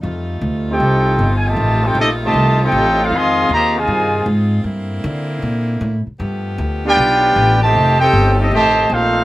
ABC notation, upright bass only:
X:1
M:4/4
L:1/8
Q:"Swing" 1/4=156
K:Flyd
V:1 name="Upright bass" clef=bass
F,,2 D,,2 C,,2 G,,,2 | A,,,2 _B,,,2 C,,2 A,,,2 | F,,2 _E,,2 G,,2 _A,,2 | G,,2 D,2 _B,,2 A,, z |
G,,2 D,,2 B,,,2 A,,,2 | F,,,2 G,,,2 A,,,2 _B,,,2 |]